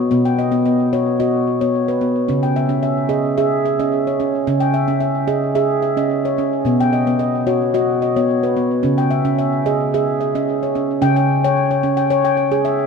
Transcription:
0.00 0.11 B4 medium
0.11 2.25 B2 medium
0.11 0.38 B3 medium
0.25 0.66 G5 soft
0.39 0.64 D#5 medium
0.52 0.79 B3 medium
0.66 1.07 D#5 medium
0.93 1.19 F#4 medium
0.93 1.34 C#5 medium
1.20 1.47 F#4 medium
1.20 1.61 D#5 medium
1.61 1.89 B3 medium
1.61 2.02 C#5 medium
1.88 2.29 B4 medium
2.01 2.29 B3 medium
2.28 4.43 C#3 medium
2.28 2.56 C#4 medium
2.43 2.83 G5 soft
2.56 2.81 E5 medium
2.69 2.97 C#4 medium
2.83 3.24 E5 medium
3.09 3.36 G#4 medium
3.09 3.51 D#5 medium
3.38 3.65 G#4 medium
3.38 3.64 E5 medium
3.65 4.07 E5 medium
3.79 4.07 C#4 medium
3.79 4.20 D#5 medium
4.07 4.47 C#5 medium
4.20 4.46 C#4 medium
4.47 6.62 C#3 medium
4.47 4.74 C#4 medium
4.60 5.01 G5 medium
4.74 4.99 E5 medium
4.88 5.15 C#4 medium
5.00 5.42 E5 medium
5.28 5.54 G#4 medium
5.28 5.70 D#5 medium
5.55 5.83 G#4 medium
5.55 5.81 E5 medium
5.82 6.24 E5 soft
5.97 6.25 C#4 medium
5.97 6.38 D#5 medium
6.25 6.65 C#5 medium
6.38 6.65 C#4 medium
6.65 8.79 B2 medium
6.65 6.93 B3 medium
6.80 7.20 G5 medium
6.93 7.18 D#5 medium
7.07 7.34 B3 medium
7.19 7.61 D#5 medium
7.47 7.73 F#4 medium
7.47 7.88 C#5 medium
7.74 8.02 F#4 medium
7.74 8.01 D#5 medium
8.02 8.43 D#5 medium
8.16 8.43 B3 medium
8.16 8.57 C#5 medium
8.43 8.84 B4 medium
8.57 8.84 B3 medium
8.83 10.98 C#3 medium
8.83 9.11 C#4 medium
8.98 9.38 G5 medium
9.11 9.37 E5 medium
9.25 9.52 C#4 medium
9.39 9.80 E5 medium
9.66 9.93 G#4 medium
9.66 10.07 D#5 medium
9.94 10.21 G#4 medium
9.94 10.19 E5 medium
10.21 10.62 E5 soft
10.35 10.62 C#4 medium
10.35 10.75 D#5 medium
10.63 11.03 C#5 medium
10.75 11.00 C#4 medium
11.02 12.87 C#3 medium
11.02 11.29 C#4 medium
11.02 11.15 G5 medium
11.16 11.43 G5 medium
11.44 11.70 C#5 medium
11.44 11.84 G5 medium
11.71 12.09 C#5 medium
11.83 12.11 C#4 medium
11.97 12.23 G5 medium
12.10 12.36 C#5 medium
12.25 12.65 G5 medium
12.37 12.79 C#5 medium
12.52 12.79 G#4 medium
12.65 12.87 E5 medium

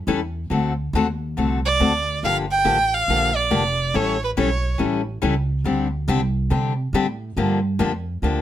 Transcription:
0.07 0.49 E2 medium
0.07 0.19 E3 medium
0.07 0.19 G3 medium
0.07 0.19 C#4 medium
0.07 0.19 E4 medium
0.07 0.19 A4 loud
0.50 0.92 D2 medium
0.50 0.72 D3 medium
0.50 0.72 A3 medium
0.50 0.72 C4 medium
0.50 0.72 F#4 medium
0.50 0.72 A4 medium
0.93 1.35 D#2 medium
0.93 1.06 D3 medium
0.93 1.06 A3 medium
0.93 1.06 C4 medium
0.93 1.06 F#4 medium
0.93 1.06 A4 medium
1.37 1.78 C2 medium
1.37 1.58 D3 medium
1.37 1.59 A3 medium
1.37 1.58 C4 medium
1.37 1.59 F#4 medium
1.37 1.59 A4 medium
1.65 2.19 D5 medium
1.80 2.21 D2 medium
1.80 1.91 D3 medium
1.80 1.91 A3 medium
1.80 1.91 C4 medium
1.80 1.92 F#4 medium
1.80 1.91 A4 medium
2.23 2.64 G1 medium
2.23 2.45 D3 medium
2.23 2.45 F3 medium
2.23 2.45 A#3 medium
2.23 2.45 D4 medium
2.23 2.45 G4 medium
2.23 2.36 F5 loud
2.51 2.96 G5 loud
2.64 3.06 A1 medium
2.64 2.76 D3 medium
2.64 2.76 F3 medium
2.64 2.76 A#3 medium
2.64 2.76 D4 medium
2.64 2.76 G4 medium
2.94 3.38 F5 loud
3.08 3.50 A#1 medium
3.08 3.30 D3 medium
3.08 3.30 F3 medium
3.08 3.30 A#3 medium
3.08 3.31 D4 medium
3.08 3.31 G4 medium
3.36 3.97 D5 medium
3.50 3.93 F1 medium
3.50 3.62 D3 medium
3.50 3.62 F3 medium
3.50 3.62 A#3 medium
3.50 3.62 D4 medium
3.50 3.62 G4 medium
3.94 4.36 A1 medium
3.94 4.15 E3 medium
3.94 4.16 G3 medium
3.94 4.16 C#4 medium
3.94 4.16 E4 medium
3.94 4.16 A4 medium
3.94 4.22 C#5 medium
4.24 4.31 B4 medium
4.37 4.79 B1 medium
4.37 4.48 E3 medium
4.37 4.48 G3 medium
4.37 4.48 C#4 medium
4.37 4.48 E4 medium
4.37 4.49 A4 medium
4.37 4.77 C#5 medium
4.78 5.21 A1 medium
4.78 5.00 E3 medium
4.78 5.01 G3 medium
4.78 5.01 C#4 medium
4.78 5.01 E4 medium
4.78 5.01 A4 medium
5.22 5.64 C#2 medium
5.22 5.33 E3 medium
5.22 5.33 G3 medium
5.22 5.33 C#4 medium
5.22 5.34 E4 medium
5.22 5.34 A4 medium
5.64 6.06 D2 medium
5.64 5.87 D3 medium
5.64 5.87 G3 medium
5.64 5.87 C4 medium
5.64 5.87 D4 medium
5.64 5.87 G4 medium
6.08 6.49 C2 medium
6.08 6.20 D3 medium
6.08 6.20 G3 medium
6.08 6.20 C4 medium
6.08 6.20 D4 loud
6.08 6.20 G4 loud
6.50 6.92 C3 medium
6.50 6.72 D3 medium
6.50 6.72 G3 medium
6.50 6.72 C4 medium
6.50 6.72 D4 medium
6.50 6.73 G4 medium
6.93 7.35 A2 medium
6.93 7.05 D3 medium
6.93 7.06 G3 medium
6.93 7.06 C4 medium
6.93 7.06 D4 medium
6.93 7.06 G4 medium
7.36 7.78 G2 medium
7.36 7.58 D3 medium
7.36 7.58 F3 medium
7.36 7.59 A#3 medium
7.36 7.59 D4 medium
7.36 7.59 G4 medium
7.79 8.21 F2 medium
7.79 7.91 D3 medium
7.79 7.91 F3 medium
7.79 7.91 A#3 medium
7.79 7.91 D4 medium
7.79 7.91 G4 medium
8.22 8.41 D2 medium
8.22 8.41 D3 medium
8.22 8.41 F3 medium
8.22 8.41 A#3 medium
8.22 8.41 D4 medium
8.22 8.41 G4 medium

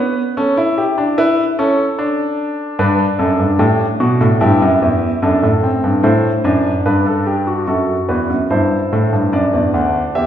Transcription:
0.00 0.21 B3 medium
0.00 0.34 B4 medium
0.37 0.56 C#4 loud
0.37 0.62 A4 medium
0.57 0.82 E4 medium
0.78 1.02 G4 medium
0.98 1.17 D4 medium
1.18 1.43 E4 loud
1.18 1.43 B4 medium
1.59 1.83 C#4 loud
1.59 2.76 A4 medium
1.99 2.77 D4 medium
2.79 3.04 G2 medium
2.79 4.38 D4 medium
2.79 3.04 B4 medium
3.19 3.39 F#2 medium
3.19 3.44 A4 medium
3.39 3.59 G2 medium
3.59 3.85 A2 medium
3.59 3.85 G4 medium
4.00 4.20 B2 medium
4.00 4.26 F#4 medium
4.21 4.41 A2 medium
4.41 4.61 G2 medium
4.41 5.20 E4 medium
4.41 5.20 G4 medium
4.62 4.81 F#2 medium
4.82 5.07 E2 medium
5.22 5.42 F#2 medium
5.22 5.48 D4 medium
5.22 6.02 A4 medium
5.43 5.68 A2 medium
5.63 5.89 C4 medium
5.84 6.04 G2 medium
6.03 6.29 A2 medium
6.03 6.29 E4 medium
6.03 6.83 C5 medium
6.44 6.70 F#2 medium
6.44 7.65 D4 medium
6.86 7.66 G2 medium
6.86 7.06 B4 medium
7.06 7.27 A4 medium
7.27 7.47 G4 medium
7.47 7.66 F#4 medium
7.67 7.93 F#2 medium
7.67 8.48 F#4 medium
7.67 7.94 A4 medium
8.09 8.29 E2 medium
8.09 8.35 B4 medium
8.30 8.50 F#2 medium
8.51 8.77 G2 medium
8.51 9.31 E4 medium
8.51 9.31 C5 medium
8.93 9.13 A2 medium
9.13 9.33 G2 medium
9.33 9.53 F#2 medium
9.33 10.12 D4 medium
9.33 10.12 D5 medium
9.53 9.73 E2 medium
9.74 9.99 D2 medium
10.15 10.27 E2 medium
10.15 10.27 G4 medium
10.15 10.27 E5 medium

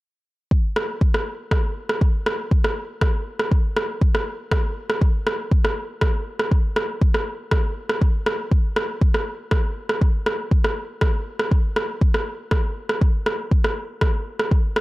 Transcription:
0.51 kick loud
0.76 cross-stick medium
1.01 kick loud
1.14 cross-stick medium
1.51 kick loud
1.51 cross-stick medium
1.89 cross-stick medium
2.01 kick loud
2.26 cross-stick medium
2.51 kick loud
2.64 cross-stick medium
3.01 kick loud
3.01 cross-stick medium
3.40 cross-stick medium
3.52 kick loud
3.77 cross-stick medium
4.01 kick loud
4.15 cross-stick medium
4.51 kick loud
4.51 cross-stick medium
4.90 cross-stick medium
5.01 kick loud
5.27 cross-stick medium
5.51 kick loud
5.65 cross-stick medium
6.01 kick loud
6.01 cross-stick medium
6.39 cross-stick medium
6.51 kick loud
6.76 cross-stick medium
7.02 kick loud
7.14 cross-stick medium
7.51 kick loud
7.51 cross-stick medium
7.89 cross-stick medium
8.02 kick loud
8.26 cross-stick medium
8.52 kick loud
8.76 cross-stick medium
9.01 kick loud
9.14 cross-stick medium
9.51 kick loud
9.51 cross-stick medium
9.89 cross-stick medium
10.01 kick loud
10.26 cross-stick medium
10.51 kick loud
10.64 cross-stick medium
11.01 kick loud
11.01 cross-stick medium
11.39 cross-stick medium
11.51 kick loud
11.76 cross-stick medium
12.01 kick loud
12.14 cross-stick medium
12.51 kick loud
12.51 cross-stick medium
12.89 cross-stick medium
13.01 kick loud
13.26 cross-stick medium
13.51 kick loud
13.64 cross-stick medium
14.01 kick loud
14.01 cross-stick medium
14.39 cross-stick medium
14.51 kick loud
14.76 cross-stick medium

